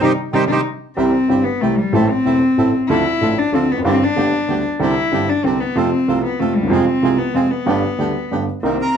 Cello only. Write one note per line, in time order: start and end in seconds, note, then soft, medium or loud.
0.01 0.11 D#4 medium
0.33 0.44 D#4 medium
0.47 0.58 D#4 medium
0.97 1.45 C4 medium
1.44 1.62 B3 medium
1.61 1.79 A3 medium
1.77 1.95 G3 medium
1.94 2.12 A3 medium
2.10 2.74 C4 medium
2.89 3.40 E4 loud
3.38 3.56 D4 medium
3.54 3.73 C4 medium
3.71 3.85 B3 medium
3.86 4.05 C4 medium
4.03 4.66 D4 loud
4.82 5.31 E4 medium
5.29 5.46 D4 medium
5.45 5.62 C4 medium
5.60 5.79 B3 medium
5.77 6.24 C4 medium
6.24 6.41 B3 medium
6.39 6.57 A3 medium
6.56 6.73 G3 medium
6.71 7.20 C4 medium
7.18 7.37 B3 medium
7.35 7.53 C4 medium
7.51 8.31 B3 medium
8.63 8.97 C4 medium